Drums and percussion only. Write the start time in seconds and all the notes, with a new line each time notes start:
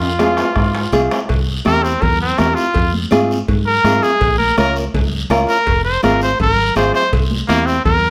0.02 high timbale
0.19 bombo rim, high conga, low timbale, short guiro
0.37 bombo rim, low timbale, short guiro
0.56 bombo low, bombo rim, low timbale, long guiro
0.75 low timbale
0.93 bombo rim, high conga, short guiro
1.11 bombo rim, low timbale, short guiro
1.29 bombo low, cowbell, long guiro
1.65 bombo rim, high conga, short guiro
1.85 short guiro
2.02 bombo low, cowbell, low conga, long guiro
2.38 bombo rim, high conga, low timbale, short guiro
2.57 short guiro
2.74 bombo low, cowbell, long guiro
2.93 high conga
3.12 bombo rim, high conga, short guiro
3.31 short guiro
3.48 bombo low, cowbell, low conga, long guiro
3.85 bombo rim, high conga, low conga, short guiro
4.03 bombo rim, short guiro
4.21 bombo low, cowbell, long guiro
4.40 high conga
4.58 bombo rim, high conga, short guiro
4.76 short guiro
4.94 bombo low, cowbell, low conga, long guiro
5.30 bombo rim, high conga, low timbale, short guiro
5.49 short guiro
5.66 bombo low, cowbell, long guiro
6.03 bombo rim, high conga, short guiro
6.21 short guiro
6.40 bombo low, cowbell, low conga, long guiro
6.76 bombo rim, high conga, low conga, short guiro
6.94 bombo rim, short guiro
7.13 bombo low, cowbell, long guiro
7.31 high conga
7.49 bombo rim, high conga, short guiro
7.67 short guiro
7.85 bombo low, cowbell, low conga, long guiro